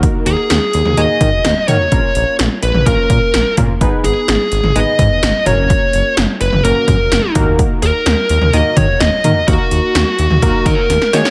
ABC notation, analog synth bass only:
X:1
M:4/4
L:1/16
Q:1/4=127
K:D#phr
V:1 name="Analog synth bass" clef=bass
z2 D,, z D,, z D,, D,, D,, z D, z D,, z D, z | A,,, z A,,, z A,,, z A,,, A,,, A,,, z A,, z A,,, z A,, z | G,,, z G,,, z G,,, z G,,, G,,, G,,, z G,, z G,,, z F,,,2- | F,,, z F,,, z F,,, z F,,, F,,, F,,, z F,, z F,,, z D,,2- |
D,, z D,, z D,, z D,, D,, D,, z D, z D,, z D, z | D,, z D,, z D,, z D,, D,, D,, z D, z D,, z D, z |]